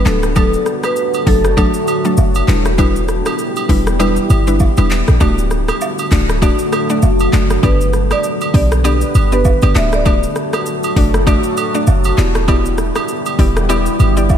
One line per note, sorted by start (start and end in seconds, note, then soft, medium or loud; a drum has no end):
0.00 5.17 D3 medium
0.00 0.11 G3 medium
0.00 0.11 B3 medium
0.00 0.11 B4 medium
0.05 0.55 D1 loud
0.05 0.34 F#3 medium
0.05 2.46 F#3 medium
0.05 0.34 A3 medium
0.05 2.46 A3 medium
0.05 0.34 D4 medium
0.05 2.46 F#4 medium
0.05 2.46 A4 medium
0.05 0.34 A4 loud
0.05 0.36 A4 medium
0.05 clap loud
0.23 cross-stick loud
0.23 shaker medium
0.36 0.92 F#3 medium
0.36 0.92 A3 medium
0.36 0.92 D4 medium
0.36 0.93 A4 loud
0.36 0.86 A4 medium
0.36 kick loud
0.36 high agogo medium
0.36 shaker medium
0.54 shaker medium
0.66 cross-stick medium
0.66 shaker soft
0.83 1.29 B4 medium
0.83 cross-stick loud
0.83 high agogo medium
0.83 shaker medium
0.96 shaker medium
1.14 high agogo medium
1.14 shaker medium
1.26 1.66 F#1 medium
1.26 1.48 F#3 medium
1.26 1.48 A3 medium
1.26 1.49 D4 medium
1.26 1.49 A4 medium
1.26 2.45 A4 medium
1.26 kick loud
1.26 open hi-hat medium
1.44 cross-stick loud
1.44 shaker medium
1.57 2.01 F#3 loud
1.57 2.01 A3 medium
1.57 2.01 D4 medium
1.57 2.01 A4 loud
1.57 kick medium
1.57 high agogo medium
1.57 shaker medium
1.74 shaker medium
1.87 high agogo medium
1.87 shaker medium
2.05 2.23 F#3 medium
2.05 2.23 A3 medium
2.05 2.23 D4 medium
2.05 2.24 A4 medium
2.05 shaker medium
2.17 2.42 F#1 medium
2.17 low woodblock medium
2.17 shaker medium
2.35 high agogo medium
2.35 shaker medium
2.48 3.22 E1 loud
2.48 2.70 G3 medium
2.48 5.18 G3 medium
2.48 5.18 B3 medium
2.48 2.70 D4 medium
2.48 5.18 E4 medium
2.48 2.70 E4 medium
2.48 5.18 G4 loud
2.48 2.70 B4 medium
2.48 clap loud
2.65 cross-stick loud
2.65 shaker medium
2.78 3.35 G3 medium
2.78 3.35 D4 medium
2.78 3.35 E4 medium
2.78 3.35 B4 loud
2.78 kick loud
2.78 high agogo medium
2.78 shaker medium
2.96 shaker medium
3.08 cross-stick medium
3.08 shaker soft
3.26 cross-stick loud
3.26 high agogo medium
3.26 shaker medium
3.39 shaker medium
3.56 high agogo medium
3.56 shaker medium
3.69 4.19 E1 medium
3.69 3.91 G3 medium
3.69 3.91 D4 medium
3.69 3.91 E4 medium
3.69 3.91 B4 medium
3.69 kick loud
3.69 open hi-hat medium
3.87 cross-stick loud
3.87 shaker medium
3.99 4.43 G3 medium
3.99 4.43 D4 medium
3.99 4.43 E4 medium
3.99 4.43 B4 loud
3.99 high agogo medium
3.99 shaker medium
4.16 shaker medium
4.30 4.69 G1 loud
4.30 high agogo medium
4.30 shaker medium
4.47 4.66 G3 medium
4.47 4.66 D4 medium
4.47 4.66 E4 medium
4.47 4.66 B4 medium
4.47 shaker medium
4.60 kick loud
4.60 low woodblock medium
4.60 shaker medium
4.77 5.02 E1 medium
4.77 4.96 G3 medium
4.77 4.96 D4 medium
4.77 4.96 E4 medium
4.77 4.96 B4 medium
4.77 high agogo medium
4.77 shaker medium
4.91 clap loud
5.08 5.18 A1 medium
5.08 cross-stick loud
5.08 shaker medium
5.20 5.70 D1 loud
5.20 14.38 D3 medium
5.20 7.61 F#3 medium
5.20 5.77 A3 loud
5.20 7.61 A3 medium
5.20 5.77 D4 medium
5.20 5.77 F#4 medium
5.20 7.61 F#4 medium
5.20 7.61 A4 medium
5.20 5.77 D5 loud
5.20 kick loud
5.20 high agogo medium
5.20 shaker medium
5.38 shaker medium
5.51 cross-stick medium
5.51 shaker soft
5.68 cross-stick loud
5.68 high agogo medium
5.68 shaker medium
5.81 low woodblock medium
5.81 shaker medium
5.99 high agogo medium
5.99 shaker medium
6.12 6.51 D1 loud
6.12 6.33 A3 medium
6.12 6.33 D4 medium
6.12 6.33 F#4 medium
6.12 6.34 D5 medium
6.12 kick loud
6.12 clap loud
6.12 open hi-hat medium
6.12 shaker medium
6.29 cross-stick loud
6.29 shaker medium
6.42 6.85 A3 medium
6.42 6.86 D4 medium
6.42 6.86 F#4 medium
6.42 6.86 D5 loud
6.42 kick loud
6.42 high agogo medium
6.42 shaker medium
6.59 shaker medium
6.72 cross-stick loud
6.72 high agogo medium
6.72 shaker medium
6.90 7.08 A3 medium
6.90 7.08 D4 medium
6.90 7.08 F#4 medium
6.90 7.08 D5 medium
6.90 shaker medium
7.02 7.27 F#1 medium
7.02 low woodblock medium
7.02 shaker medium
7.19 high agogo medium
7.19 shaker medium
7.33 7.58 F#1 medium
7.33 7.54 A3 medium
7.33 7.55 D4 medium
7.33 7.55 F#4 medium
7.33 7.55 D5 medium
7.33 clap medium
7.33 shaker medium
7.50 cross-stick loud
7.50 shaker medium
7.63 8.13 G1 loud
7.63 9.73 G3 medium
7.63 8.20 B3 medium
7.63 9.73 B3 medium
7.63 8.20 D4 medium
7.63 8.20 G4 medium
7.63 9.73 G4 medium
7.63 9.73 B4 medium
7.63 8.08 B4 medium
7.63 8.20 D5 loud
7.63 kick loud
7.63 high agogo medium
7.63 shaker medium
7.81 shaker medium
7.93 cross-stick medium
7.93 shaker medium
8.11 8.54 D5 medium
8.11 cross-stick loud
8.11 high agogo medium
8.11 shaker medium
8.24 shaker medium
8.41 high agogo medium
8.41 shaker medium
8.54 9.03 B1 medium
8.54 8.76 B3 medium
8.54 8.76 D4 medium
8.54 8.76 G4 medium
8.54 8.76 D5 medium
8.54 9.35 D5 loud
8.54 kick loud
8.54 open hi-hat medium
8.72 cross-stick loud
8.72 shaker medium
8.84 9.28 B3 medium
8.84 9.28 D4 medium
8.84 9.28 G4 medium
8.84 9.28 D5 loud
8.84 high agogo medium
8.84 shaker medium
9.01 shaker medium
9.15 9.54 G1 medium
9.15 high agogo medium
9.15 shaker medium
9.32 9.51 B3 medium
9.32 9.51 D4 medium
9.32 9.51 G4 medium
9.32 9.77 B4 loud
9.32 9.51 D5 medium
9.32 shaker medium
9.45 kick loud
9.45 low woodblock medium
9.45 shaker medium
9.62 9.73 G1 medium
9.62 9.81 B3 medium
9.62 9.74 D4 medium
9.62 9.81 G4 medium
9.62 9.74 D5 medium
9.62 high agogo medium
9.62 shaker medium
9.75 10.25 D1 loud
9.75 12.15 F#3 medium
9.75 10.03 A3 medium
9.75 12.15 A3 medium
9.75 10.04 D4 medium
9.75 10.04 F#4 medium
9.75 12.15 F#4 medium
9.75 12.15 A4 medium
9.75 10.04 D5 loud
9.75 9.94 E5 loud
9.75 clap loud
9.93 11.11 D5 medium
9.93 cross-stick loud
9.93 shaker medium
10.05 10.62 A3 medium
10.05 10.62 D4 medium
10.05 10.62 F#4 medium
10.05 10.62 D5 loud
10.05 kick loud
10.05 high agogo medium
10.05 shaker medium
10.23 shaker medium
10.36 cross-stick medium
10.36 shaker soft
10.53 cross-stick loud
10.53 high agogo medium
10.53 shaker medium
10.66 shaker medium
10.83 high agogo medium
10.83 shaker medium
10.96 11.35 F#1 medium
10.96 11.18 A3 medium
10.96 11.18 D4 medium
10.96 11.18 F#4 medium
10.96 11.18 D5 medium
10.96 kick loud
10.96 open hi-hat medium
11.14 cross-stick loud
11.14 shaker medium
11.27 11.70 A3 loud
11.27 11.70 D4 medium
11.27 11.71 F#4 medium
11.27 11.71 D5 loud
11.27 kick loud
11.27 high agogo medium
11.27 shaker medium
11.43 shaker medium
11.57 high agogo medium
11.57 shaker medium
11.74 11.93 A3 medium
11.74 11.93 D4 medium
11.74 11.93 F#4 medium
11.74 11.93 D5 medium
11.74 shaker medium
11.87 12.12 F#1 medium
11.87 low woodblock medium
11.87 shaker medium
12.04 high agogo medium
12.04 shaker medium
12.18 12.92 E1 loud
12.18 14.38 G3 medium
12.18 12.39 B3 medium
12.18 14.38 B3 medium
12.18 14.38 E4 medium
12.18 12.39 E4 medium
12.18 14.38 G4 medium
12.18 12.40 G4 medium
12.18 12.40 D5 medium
12.18 clap loud
12.35 cross-stick loud
12.35 shaker medium
12.48 13.04 B3 medium
12.48 13.05 E4 medium
12.48 13.05 G4 medium
12.48 13.05 D5 loud
12.48 kick loud
12.48 high agogo medium
12.48 shaker medium
12.66 shaker medium
12.78 cross-stick medium
12.78 shaker soft
12.95 cross-stick loud
12.95 high agogo medium
12.95 shaker medium
13.08 shaker medium
13.26 high agogo medium
13.26 shaker medium
13.39 13.88 E1 medium
13.39 13.61 B3 medium
13.39 13.61 E4 medium
13.39 13.61 G4 medium
13.39 13.61 D5 medium
13.39 kick loud
13.39 open hi-hat medium
13.57 cross-stick loud
13.57 shaker medium
13.69 14.13 B3 loud
13.69 14.13 E4 medium
13.69 14.13 G4 medium
13.69 14.13 D5 loud
13.69 high agogo medium
13.69 shaker medium
13.86 shaker medium
13.99 14.38 G1 medium
13.99 high agogo medium
13.99 shaker medium
14.17 14.35 B3 medium
14.17 14.35 E4 medium
14.17 14.36 G4 medium
14.17 14.36 D5 medium
14.17 shaker medium
14.29 kick loud
14.29 low woodblock medium
14.29 shaker medium